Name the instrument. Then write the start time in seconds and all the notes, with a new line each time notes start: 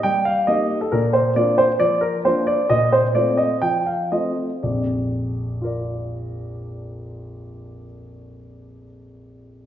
grand piano
0.03 G3 G5
0.25 F5
0.47 A#3 D#4 G4 D#5
0.81 A4
0.92 A#2 A#4
1.13 C5
1.36 A#3 D4 F4 D5
1.58 C5
1.80 F3 D5
2.01 A#4
2.25 A#3 D4 F4 C5
2.47 D5
2.70 A#2 D#5
2.92 C5
3.15 A3 C4 F4 D5
3.37 D#5
3.62 F3 G5
3.86 F5
4.12 A3 C4 F4 D#5
4.63 A#1 F2 D5
5.62 F4 A#4
5.66 D5